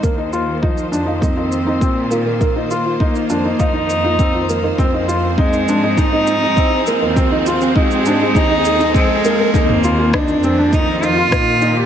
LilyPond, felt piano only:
\new Staff \with { instrumentName = "Felt piano" } { \time 4/4 \key f \dorian \tempo 4 = 101 bes16 ees'16 f'8 ees'8 d'16 ees'16 ees'16 ees'8 ees'16 c'8 bes16 bes16 | bes16 ees'16 f'8 ees'8 d'16 ees'16 ees'16 ees'8 ees'16 c'8 bes16 bes16 | c'16 ees'16 f'8 ees'8 d'16 ees'16 ees'16 ees'8 ees'16 c'8 bes16 bes16 | c'16 ees'16 f'8 ees'8 d'16 ees'16 ees'16 ees'8 ees'16 c'8 bes16 bes16 |
ees'8 f'16 f'16 ees'8 c'16 d'16 ees'8 ees'16 f'16 ees'8 ees'16 g'16 | }